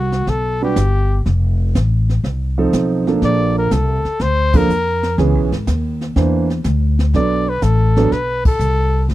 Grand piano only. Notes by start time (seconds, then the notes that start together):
0.61 G3 D4 F#4 B4
2.58 F3 C4 D#4 A4
3.07 F3 A#3 D4 A4
4.54 F3 A#3 D4 A4
5.18 E3 B3 C#4 G#4
6.16 E3 A#3 D4 C5
7.14 F#3 B3 D4 A4
7.97 F#3 B3 D4 A4